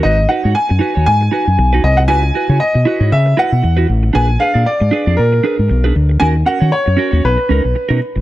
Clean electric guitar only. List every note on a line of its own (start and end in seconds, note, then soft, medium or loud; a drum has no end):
0.03 0.19 D#4 medium
0.03 0.18 F#4 medium
0.03 0.17 B4 medium
0.18 muted clean electric guitar stroke soft
0.29 0.42 D#4 medium
0.29 0.42 F#4 medium
0.29 0.43 B4 medium
0.44 0.53 D#4 medium
0.44 0.54 F#4 medium
0.44 0.54 C#5 medium
0.54 muted clean electric guitar stroke soft
0.69 muted clean electric guitar stroke medium
0.79 0.95 D#4 medium
0.79 0.94 F#4 medium
0.79 0.95 B4 loud
0.95 1.06 D#4 medium
0.95 1.05 F#4 medium
0.95 1.05 C#5 medium
1.21 muted clean electric guitar stroke soft
1.32 1.48 D#4 medium
1.32 1.46 F#4 loud
1.32 1.45 B4 medium
1.46 muted clean electric guitar stroke soft
1.58 muted clean electric guitar stroke soft
1.73 1.82 D#4 medium
1.73 1.83 F#4 medium
1.73 1.84 B4 medium
1.83 muted clean electric guitar stroke soft
1.98 muted clean electric guitar stroke medium
2.08 2.24 E4 medium
2.08 2.24 F#4 medium
2.08 2.23 B4 loud
2.24 muted clean electric guitar stroke soft
2.34 2.47 E4 medium
2.34 2.48 F#4 medium
2.34 2.48 B4 medium
2.50 2.59 E4 medium
2.50 2.60 F#4 medium
2.50 2.59 C#5 medium
2.60 muted clean electric guitar stroke soft
2.74 muted clean electric guitar stroke soft
2.85 3.01 E4 medium
2.85 3.00 F#4 medium
2.85 3.00 B4 medium
3.00 3.11 E4 medium
3.00 3.11 F#4 medium
3.00 3.10 C#5 medium
3.26 muted clean electric guitar stroke soft
3.37 3.53 E4 medium
3.37 3.52 F#4 medium
3.37 3.50 B4 medium
3.51 muted clean electric guitar stroke soft
3.62 muted clean electric guitar stroke medium
3.77 3.87 E4 medium
3.77 3.87 F#4 medium
3.77 3.88 B4 medium
4.03 muted clean electric guitar stroke soft
4.13 4.30 D4 medium
4.13 4.29 G#4 medium
4.13 4.28 B4 loud
4.29 muted clean electric guitar stroke soft
4.39 4.53 D4 medium
4.39 4.53 G#4 medium
4.39 4.53 B4 medium
4.54 4.64 D4 medium
4.54 4.64 G#4 medium
4.54 4.64 D5 medium
4.65 muted clean electric guitar stroke soft
4.80 muted clean electric guitar stroke soft
4.91 5.07 D4 loud
4.91 5.06 G#4 loud
4.91 5.06 B4 medium
5.06 5.17 D4 medium
5.06 5.17 G#4 medium
5.06 5.16 D5 medium
5.33 muted clean electric guitar stroke medium
5.43 5.59 D4 medium
5.43 5.58 G#4 medium
5.43 5.57 B4 medium
5.58 muted clean electric guitar stroke soft
5.68 muted clean electric guitar stroke soft
5.84 5.94 D4 medium
5.84 5.95 G#4 medium
5.84 5.95 B4 loud
5.95 muted clean electric guitar stroke soft
6.09 muted clean electric guitar stroke soft
6.20 6.36 C#4 medium
6.20 6.36 F#4 medium
6.20 6.34 A#4 medium
6.36 muted clean electric guitar stroke soft
6.46 6.59 C#4 medium
6.46 6.59 F#4 medium
6.46 6.59 A#4 medium
6.60 6.71 C#4 medium
6.60 6.71 F#4 medium
6.60 6.70 C#5 medium
6.72 muted clean electric guitar stroke soft
6.86 muted clean electric guitar stroke soft
6.97 7.12 C#4 medium
6.97 7.11 F#4 medium
6.97 7.11 A#4 medium
7.11 7.22 C#4 medium
7.11 7.22 F#4 medium
7.11 7.22 C#5 medium
7.38 muted clean electric guitar stroke soft
7.49 7.65 C#4 medium
7.49 7.64 D#4 medium
7.49 7.63 A#4 loud
7.64 muted clean electric guitar stroke soft
7.75 muted clean electric guitar stroke soft
7.89 7.99 C#4 medium
7.89 8.00 D#4 medium
7.89 8.01 A#4 medium
8.01 muted clean electric guitar stroke soft
8.16 muted clean electric guitar stroke soft